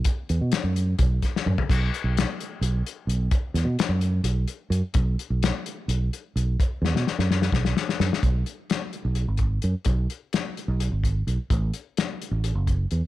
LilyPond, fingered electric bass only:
\new Staff \with { instrumentName = "Fingered electric bass" } { \clef bass \time 7/8 \key a \major \tempo 4 = 128 r8 e,16 b,16 r16 fis,8. b,,8 r8 fis,16 r16 | b,,8 r16 b,,8 r8. b,,8 r8 b,,8 | r8 e,16 b,16 r16 fis,8. b,,8 r8 fis,16 r16 | b,,8 r16 b,,8 r8. b,,8 r8 b,,8 |
r8 e,16 b,16 r16 fis,8. b,,8 r8 fis,16 r16 | b,,8 r4 r16 b,,8 gis,,8. fis,16 r16 | b,,8 r4 r16 b,,8 gis,,8. b,,16 r16 | a,,8 r4 r16 a,,8 fis,,8. e,16 r16 | }